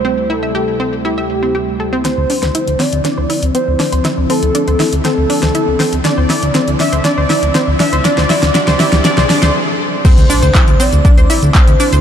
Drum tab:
CC |----------------|----------------|----------------|----------------|
HH |xxxxxxxxx-xxx-xx|x-oxxxoxx-oxx-ox|x-oxxxoxx-oxx-ox|x-oxxxoxx-oxx-ox|
SH |-x-xxx-xxx-xxx-x|----------------|----------------|----------------|
CP |----------------|----------------|----------------|----------------|
SD |----------------|o--o--o-o-----o-|o-----o-o--o--o-|o-o-o-o-o-o-o-o-|
BD |----------------|----------------|----------------|----------------|

CC |----------------|x---------------|
HH |x-oxxxoxx-ox----|xxoxxxoxxxoxxxox|
SH |----------------|xxxxxxxxxxxxxxxx|
CP |----------------|----x-------x---|
SD |oooooooooooo----|----------------|
BD |----------------|o---o---o---o---|